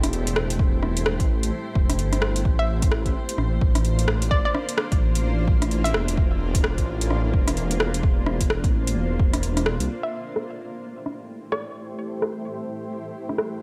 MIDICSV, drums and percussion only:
0, 0, Header, 1, 2, 480
1, 0, Start_track
1, 0, Tempo, 465116
1, 612, Time_signature, 4, 2, 24, 8
1, 14058, End_track
2, 0, Start_track
2, 0, Title_t, "Drums"
2, 36, Note_on_c, 9, 37, 62
2, 36, Note_on_c, 9, 42, 60
2, 134, Note_off_c, 9, 42, 0
2, 134, Note_on_c, 9, 42, 33
2, 139, Note_off_c, 9, 37, 0
2, 238, Note_off_c, 9, 42, 0
2, 279, Note_on_c, 9, 42, 46
2, 373, Note_on_c, 9, 37, 110
2, 382, Note_off_c, 9, 42, 0
2, 477, Note_off_c, 9, 37, 0
2, 519, Note_on_c, 9, 42, 57
2, 612, Note_on_c, 9, 36, 121
2, 622, Note_off_c, 9, 42, 0
2, 715, Note_off_c, 9, 36, 0
2, 853, Note_on_c, 9, 37, 60
2, 957, Note_off_c, 9, 37, 0
2, 998, Note_on_c, 9, 42, 53
2, 1093, Note_on_c, 9, 37, 109
2, 1101, Note_off_c, 9, 42, 0
2, 1196, Note_off_c, 9, 37, 0
2, 1236, Note_on_c, 9, 36, 106
2, 1237, Note_on_c, 9, 42, 30
2, 1340, Note_off_c, 9, 36, 0
2, 1341, Note_off_c, 9, 42, 0
2, 1478, Note_on_c, 9, 42, 54
2, 1581, Note_off_c, 9, 42, 0
2, 1811, Note_on_c, 9, 36, 103
2, 1914, Note_off_c, 9, 36, 0
2, 1957, Note_on_c, 9, 37, 62
2, 1957, Note_on_c, 9, 42, 55
2, 2051, Note_off_c, 9, 42, 0
2, 2051, Note_on_c, 9, 42, 31
2, 2060, Note_off_c, 9, 37, 0
2, 2155, Note_off_c, 9, 42, 0
2, 2194, Note_on_c, 9, 37, 59
2, 2194, Note_on_c, 9, 42, 44
2, 2289, Note_off_c, 9, 37, 0
2, 2289, Note_on_c, 9, 37, 106
2, 2297, Note_off_c, 9, 42, 0
2, 2392, Note_off_c, 9, 37, 0
2, 2434, Note_on_c, 9, 42, 55
2, 2530, Note_on_c, 9, 36, 121
2, 2537, Note_off_c, 9, 42, 0
2, 2633, Note_off_c, 9, 36, 0
2, 2914, Note_on_c, 9, 36, 109
2, 2914, Note_on_c, 9, 42, 53
2, 3009, Note_on_c, 9, 37, 107
2, 3017, Note_off_c, 9, 36, 0
2, 3017, Note_off_c, 9, 42, 0
2, 3113, Note_off_c, 9, 37, 0
2, 3154, Note_on_c, 9, 36, 62
2, 3155, Note_on_c, 9, 42, 31
2, 3257, Note_off_c, 9, 36, 0
2, 3258, Note_off_c, 9, 42, 0
2, 3394, Note_on_c, 9, 42, 53
2, 3490, Note_on_c, 9, 37, 51
2, 3497, Note_off_c, 9, 42, 0
2, 3594, Note_off_c, 9, 37, 0
2, 3730, Note_on_c, 9, 36, 103
2, 3833, Note_off_c, 9, 36, 0
2, 3873, Note_on_c, 9, 37, 64
2, 3873, Note_on_c, 9, 42, 52
2, 3969, Note_off_c, 9, 42, 0
2, 3969, Note_on_c, 9, 42, 30
2, 3976, Note_off_c, 9, 37, 0
2, 4072, Note_off_c, 9, 42, 0
2, 4115, Note_on_c, 9, 42, 43
2, 4209, Note_on_c, 9, 37, 106
2, 4218, Note_off_c, 9, 42, 0
2, 4312, Note_off_c, 9, 37, 0
2, 4354, Note_on_c, 9, 42, 53
2, 4449, Note_on_c, 9, 36, 113
2, 4458, Note_off_c, 9, 42, 0
2, 4553, Note_off_c, 9, 36, 0
2, 4692, Note_on_c, 9, 37, 66
2, 4795, Note_off_c, 9, 37, 0
2, 4836, Note_on_c, 9, 42, 55
2, 4929, Note_on_c, 9, 37, 101
2, 4940, Note_off_c, 9, 42, 0
2, 5032, Note_off_c, 9, 37, 0
2, 5075, Note_on_c, 9, 36, 105
2, 5075, Note_on_c, 9, 42, 29
2, 5178, Note_off_c, 9, 36, 0
2, 5178, Note_off_c, 9, 42, 0
2, 5319, Note_on_c, 9, 42, 53
2, 5422, Note_off_c, 9, 42, 0
2, 5651, Note_on_c, 9, 36, 102
2, 5754, Note_off_c, 9, 36, 0
2, 5800, Note_on_c, 9, 37, 67
2, 5800, Note_on_c, 9, 42, 55
2, 5896, Note_off_c, 9, 42, 0
2, 5896, Note_on_c, 9, 42, 29
2, 5903, Note_off_c, 9, 37, 0
2, 5999, Note_off_c, 9, 42, 0
2, 6041, Note_on_c, 9, 42, 43
2, 6133, Note_on_c, 9, 37, 105
2, 6145, Note_off_c, 9, 42, 0
2, 6236, Note_off_c, 9, 37, 0
2, 6278, Note_on_c, 9, 42, 54
2, 6372, Note_on_c, 9, 36, 111
2, 6381, Note_off_c, 9, 42, 0
2, 6475, Note_off_c, 9, 36, 0
2, 6756, Note_on_c, 9, 36, 104
2, 6757, Note_on_c, 9, 42, 55
2, 6851, Note_on_c, 9, 37, 101
2, 6859, Note_off_c, 9, 36, 0
2, 6861, Note_off_c, 9, 42, 0
2, 6955, Note_off_c, 9, 37, 0
2, 6996, Note_on_c, 9, 36, 59
2, 6998, Note_on_c, 9, 42, 32
2, 7099, Note_off_c, 9, 36, 0
2, 7101, Note_off_c, 9, 42, 0
2, 7238, Note_on_c, 9, 42, 58
2, 7333, Note_on_c, 9, 37, 53
2, 7341, Note_off_c, 9, 42, 0
2, 7436, Note_off_c, 9, 37, 0
2, 7571, Note_on_c, 9, 36, 98
2, 7674, Note_off_c, 9, 36, 0
2, 7716, Note_on_c, 9, 37, 70
2, 7716, Note_on_c, 9, 42, 56
2, 7812, Note_off_c, 9, 42, 0
2, 7812, Note_on_c, 9, 42, 31
2, 7819, Note_off_c, 9, 37, 0
2, 7915, Note_off_c, 9, 42, 0
2, 7955, Note_on_c, 9, 42, 43
2, 8051, Note_on_c, 9, 37, 105
2, 8058, Note_off_c, 9, 42, 0
2, 8154, Note_off_c, 9, 37, 0
2, 8197, Note_on_c, 9, 42, 54
2, 8291, Note_on_c, 9, 36, 114
2, 8300, Note_off_c, 9, 42, 0
2, 8394, Note_off_c, 9, 36, 0
2, 8530, Note_on_c, 9, 37, 70
2, 8633, Note_off_c, 9, 37, 0
2, 8675, Note_on_c, 9, 36, 61
2, 8675, Note_on_c, 9, 42, 56
2, 8773, Note_on_c, 9, 37, 101
2, 8778, Note_off_c, 9, 36, 0
2, 8779, Note_off_c, 9, 42, 0
2, 8876, Note_off_c, 9, 37, 0
2, 8915, Note_on_c, 9, 36, 104
2, 8918, Note_on_c, 9, 42, 34
2, 9018, Note_off_c, 9, 36, 0
2, 9021, Note_off_c, 9, 42, 0
2, 9158, Note_on_c, 9, 42, 57
2, 9261, Note_off_c, 9, 42, 0
2, 9489, Note_on_c, 9, 36, 103
2, 9593, Note_off_c, 9, 36, 0
2, 9634, Note_on_c, 9, 37, 70
2, 9634, Note_on_c, 9, 42, 59
2, 9732, Note_off_c, 9, 42, 0
2, 9732, Note_on_c, 9, 42, 33
2, 9737, Note_off_c, 9, 37, 0
2, 9835, Note_off_c, 9, 42, 0
2, 9876, Note_on_c, 9, 37, 63
2, 9876, Note_on_c, 9, 42, 47
2, 9970, Note_off_c, 9, 37, 0
2, 9970, Note_on_c, 9, 37, 101
2, 9979, Note_off_c, 9, 42, 0
2, 10073, Note_off_c, 9, 37, 0
2, 10117, Note_on_c, 9, 42, 58
2, 10220, Note_off_c, 9, 42, 0
2, 10692, Note_on_c, 9, 37, 90
2, 10795, Note_off_c, 9, 37, 0
2, 11414, Note_on_c, 9, 37, 55
2, 11517, Note_off_c, 9, 37, 0
2, 11893, Note_on_c, 9, 37, 91
2, 11996, Note_off_c, 9, 37, 0
2, 12613, Note_on_c, 9, 37, 96
2, 12717, Note_off_c, 9, 37, 0
2, 13718, Note_on_c, 9, 37, 48
2, 13812, Note_off_c, 9, 37, 0
2, 13812, Note_on_c, 9, 37, 100
2, 13915, Note_off_c, 9, 37, 0
2, 14058, End_track
0, 0, End_of_file